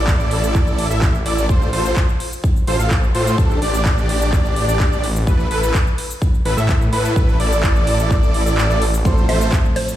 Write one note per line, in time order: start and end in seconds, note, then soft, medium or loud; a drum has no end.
0.00 0.88 A1 loud
0.00 0.87 E4 medium
0.00 0.87 A4 medium
0.00 0.87 D5 loud
0.00 0.87 D5 medium
0.07 kick loud
0.07 clap loud
0.07 cabasa medium
0.20 cabasa soft
0.31 open hi-hat loud
0.44 cabasa medium
0.55 kick loud
0.55 clap medium
0.55 cabasa medium
0.67 cabasa soft
0.78 open hi-hat loud
0.90 1.23 A1 medium
0.90 1.13 E4 medium
0.90 1.13 A4 medium
0.90 1.13 E5 medium
0.90 cabasa medium
1.02 kick loud
1.02 clap loud
1.02 cabasa medium
1.15 cabasa soft
1.26 1.47 A1 medium
1.26 1.46 E4 medium
1.26 1.46 A4 medium
1.26 1.46 D5 loud
1.26 1.46 D5 medium
1.26 open hi-hat loud
1.38 cabasa medium
1.49 1.71 A1 loud
1.49 1.69 F4 medium
1.49 1.69 A4 medium
1.49 1.69 C5 medium
1.49 1.69 C5 loud
1.49 kick loud
1.49 cabasa medium
1.62 cabasa soft
1.73 1.93 A1 loud
1.73 1.95 F4 medium
1.73 1.95 A4 medium
1.73 1.95 C5 loud
1.73 open hi-hat loud
1.86 cabasa medium
1.96 kick loud
1.96 clap loud
1.96 cabasa medium
2.09 cabasa soft
2.20 open hi-hat loud
2.33 cabasa medium
2.44 kick loud
2.44 cabasa medium
2.56 cabasa soft
2.67 2.77 A1 medium
2.67 2.76 F4 loud
2.67 2.76 A4 medium
2.67 2.76 C5 loud
2.67 open hi-hat loud
2.79 3.12 A1 loud
2.79 2.93 F4 medium
2.79 2.93 A4 medium
2.79 2.93 F5 medium
2.79 cabasa medium
2.91 kick loud
2.91 clap loud
2.91 cabasa medium
3.04 cabasa soft
3.15 3.36 A2 loud
3.15 3.35 F4 medium
3.15 3.35 A4 medium
3.15 3.35 C5 loud
3.15 open hi-hat loud
3.27 cabasa medium
3.38 3.59 A1 loud
3.38 3.58 D4 medium
3.38 3.58 G4 medium
3.38 3.58 A4 medium
3.38 kick loud
3.38 cabasa medium
3.51 cabasa soft
3.62 4.66 A1 loud
3.62 4.65 D4 medium
3.62 4.65 G4 medium
3.62 4.65 D5 loud
3.62 open hi-hat loud
3.74 cabasa medium
3.85 kick loud
3.85 clap loud
3.85 cabasa medium
3.98 cabasa soft
4.09 open hi-hat loud
4.22 cabasa medium
4.33 kick loud
4.33 clap medium
4.33 cabasa medium
4.45 cabasa soft
4.56 open hi-hat loud
4.68 4.89 A1 loud
4.68 4.88 D4 medium
4.68 4.88 G4 medium
4.68 4.88 D5 loud
4.68 cabasa medium
4.80 kick loud
4.80 clap loud
4.80 cabasa medium
4.92 5.25 A1 loud
4.92 5.06 D4 medium
4.92 5.06 G4 medium
4.92 5.06 D5 medium
4.92 cabasa soft
5.04 open hi-hat loud
5.16 cabasa medium
5.27 5.48 A1 loud
5.27 5.47 E4 medium
5.27 5.47 A4 medium
5.27 5.47 B4 medium
5.27 5.47 B4 loud
5.27 kick loud
5.27 cabasa medium
5.40 cabasa soft
5.51 5.71 A1 loud
5.51 5.73 E4 medium
5.51 5.73 A4 medium
5.51 5.73 B4 loud
5.51 open hi-hat loud
5.63 cabasa medium
5.74 kick loud
5.74 clap loud
5.74 cabasa medium
5.87 cabasa soft
5.98 open hi-hat loud
6.11 cabasa medium
6.22 kick loud
6.22 cabasa medium
6.34 cabasa soft
6.45 6.55 A1 loud
6.45 6.54 E4 medium
6.45 6.54 A4 medium
6.45 6.54 B4 loud
6.45 open hi-hat loud
6.57 6.90 A2 medium
6.57 6.71 E4 medium
6.57 6.71 A4 medium
6.57 6.71 E5 medium
6.57 6.71 E5 loud
6.57 cabasa medium
6.69 kick loud
6.69 clap loud
6.69 cabasa medium
6.82 cabasa soft
6.93 7.14 A2 loud
6.93 7.13 E4 medium
6.93 7.13 A4 medium
6.93 7.13 B4 loud
6.93 open hi-hat loud
7.05 cabasa medium
7.16 7.37 A1 loud
7.16 7.36 A4 medium
7.16 7.36 B4 medium
7.16 kick loud
7.16 cabasa medium
7.29 cabasa soft
7.40 8.44 A1 loud
7.40 8.43 E4 medium
7.40 8.43 A4 medium
7.40 8.43 D5 loud
7.40 open hi-hat loud
7.52 cabasa medium
7.63 kick loud
7.63 clap loud
7.63 cabasa medium
7.76 cabasa soft
7.87 open hi-hat loud
8.00 cabasa medium
8.11 kick loud
8.11 clap medium
8.11 cabasa medium
8.23 cabasa soft
8.34 open hi-hat loud
8.46 8.67 A1 loud
8.46 8.66 E4 medium
8.46 8.66 A4 medium
8.46 8.66 D5 loud
8.46 cabasa medium
8.58 clap loud
8.58 cabasa medium
8.70 9.03 A1 loud
8.70 8.84 E4 medium
8.70 8.84 A4 medium
8.70 8.84 D5 medium
8.70 cabasa soft
8.82 open hi-hat loud
8.94 cabasa medium
9.04 9.26 A1 loud
9.04 9.96 A2 medium
9.04 9.96 F3 medium
9.04 9.96 A3 medium
9.04 9.96 C4 medium
9.04 9.25 F4 medium
9.04 9.25 A4 medium
9.04 9.96 A4 medium
9.04 9.25 C5 medium
9.04 kick loud
9.04 ride medium
9.04 cabasa medium
9.18 cabasa soft
9.29 9.49 A1 loud
9.29 9.51 F4 medium
9.29 9.51 A4 medium
9.29 9.51 C5 loud
9.29 9.74 E5 medium
9.29 open hi-hat loud
9.29 ride medium
9.41 cabasa medium
9.52 kick loud
9.52 clap loud
9.52 ride medium
9.52 cabasa medium
9.65 cabasa soft
9.76 9.88 C5 medium
9.76 open hi-hat loud
9.76 ride medium
9.89 cabasa medium